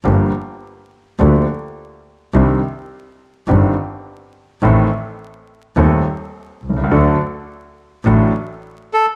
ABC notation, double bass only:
X:1
M:4/4
L:1/8
Q:1/4=105
K:Gm
V:1 name="Double bass" clef=bass
G,,, z3 D,, z3 | C,, z3 G,,, z3 | A,,, z3 E,, z2 C,, | D,, z3 A,,, z3 |]